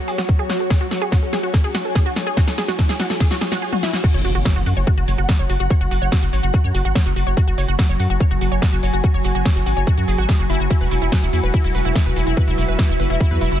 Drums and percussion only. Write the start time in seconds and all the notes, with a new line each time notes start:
0.08 open hi-hat, shaker
0.18 snare, closed hi-hat, shaker
0.29 kick, closed hi-hat, shaker
0.39 closed hi-hat, shaker
0.50 snare, open hi-hat, shaker
0.60 closed hi-hat, shaker
0.70 kick, snare, closed hi-hat, shaker
0.81 closed hi-hat, shaker
0.91 snare, open hi-hat, shaker
1.01 closed hi-hat, shaker
1.12 kick, snare, closed hi-hat, shaker
1.23 closed hi-hat, shaker
1.33 snare, open hi-hat, shaker
1.43 closed hi-hat, shaker
1.54 kick, snare, closed hi-hat, shaker
1.64 closed hi-hat, shaker
1.75 snare, open hi-hat, shaker
1.85 closed hi-hat, shaker
1.95 kick, snare, closed hi-hat, shaker
2.06 closed hi-hat, shaker
2.16 snare, open hi-hat, shaker
2.26 closed hi-hat, shaker
2.37 kick, snare, closed hi-hat, shaker
2.47 snare, closed hi-hat, shaker
2.57 snare, open hi-hat, shaker
2.68 snare, closed hi-hat, shaker
2.79 kick, snare, closed hi-hat, shaker
2.89 snare, closed hi-hat, shaker
2.99 snare, open hi-hat, shaker
3.10 snare, closed hi-hat, shaker
3.20 kick, snare, closed hi-hat, shaker
3.31 snare, closed hi-hat, shaker
3.41 snare, open hi-hat, shaker
3.52 snare, closed hi-hat, shaker
3.73 high tom
3.83 snare
3.93 snare
4.04 kick, closed hi-hat, crash, shaker
4.13 closed hi-hat, shaker
4.24 open hi-hat, shaker
4.35 closed hi-hat, shaker
4.45 kick, snare, closed hi-hat, shaker
4.56 closed hi-hat, shaker
4.66 open hi-hat, shaker
4.77 closed hi-hat, shaker
4.87 kick, closed hi-hat, shaker
4.98 closed hi-hat, shaker
5.08 open hi-hat, shaker
5.18 closed hi-hat, shaker
5.28 kick, snare, closed hi-hat, shaker
5.39 closed hi-hat, shaker
5.50 open hi-hat, shaker
5.60 closed hi-hat, shaker
5.70 kick, closed hi-hat, shaker
5.80 closed hi-hat, shaker
5.91 open hi-hat, shaker
6.02 closed hi-hat, shaker
6.12 kick, snare, closed hi-hat, shaker
6.23 closed hi-hat, shaker
6.33 open hi-hat, shaker
6.43 closed hi-hat, shaker
6.53 kick, closed hi-hat, shaker
6.64 closed hi-hat, shaker
6.75 open hi-hat, shaker
6.85 closed hi-hat, shaker
6.95 kick, snare, closed hi-hat, shaker
7.06 closed hi-hat, shaker
7.16 open hi-hat, shaker
7.27 closed hi-hat, shaker
7.37 kick, closed hi-hat, shaker
7.48 closed hi-hat, shaker
7.58 open hi-hat, shaker
7.68 closed hi-hat, shaker
7.78 kick, snare, closed hi-hat, shaker
7.89 closed hi-hat, shaker
7.99 open hi-hat, shaker
8.10 closed hi-hat, shaker
8.20 kick, closed hi-hat, shaker
8.31 closed hi-hat, shaker
8.41 open hi-hat, shaker
8.52 closed hi-hat, shaker
8.62 kick, snare, closed hi-hat, shaker
8.72 closed hi-hat, shaker
8.83 open hi-hat, shaker
8.93 closed hi-hat, shaker
9.04 kick, closed hi-hat, shaker
9.14 closed hi-hat, shaker
9.24 open hi-hat, shaker
9.35 closed hi-hat, shaker
9.45 kick, snare, closed hi-hat, shaker
9.56 closed hi-hat, shaker
9.66 open hi-hat, shaker
9.76 closed hi-hat, shaker
9.87 kick, closed hi-hat, shaker
9.98 closed hi-hat, shaker
10.08 open hi-hat, shaker
10.18 closed hi-hat, shaker
10.28 kick, snare, closed hi-hat, shaker
10.39 closed hi-hat, shaker
10.49 open hi-hat, shaker
10.60 closed hi-hat, shaker
10.70 kick, closed hi-hat, ride, shaker
10.80 closed hi-hat, shaker
10.91 open hi-hat, shaker
11.01 closed hi-hat, shaker
11.12 kick, snare, closed hi-hat, ride, shaker
11.22 closed hi-hat, shaker
11.33 open hi-hat, shaker
11.43 closed hi-hat, shaker
11.53 kick, closed hi-hat, ride, shaker
11.64 closed hi-hat, shaker
11.75 open hi-hat, shaker
11.85 closed hi-hat, shaker
11.95 kick, snare, closed hi-hat, ride, shaker
12.06 closed hi-hat, shaker
12.16 open hi-hat, shaker
12.27 closed hi-hat, shaker
12.37 kick, closed hi-hat, ride, shaker
12.48 closed hi-hat, shaker
12.58 open hi-hat, shaker
12.68 closed hi-hat, shaker
12.78 kick, snare, closed hi-hat, ride, shaker
12.89 closed hi-hat, shaker
13.00 open hi-hat, shaker
13.10 closed hi-hat, shaker
13.20 kick, closed hi-hat, ride, shaker
13.31 closed hi-hat, shaker
13.41 open hi-hat, shaker
13.52 closed hi-hat, shaker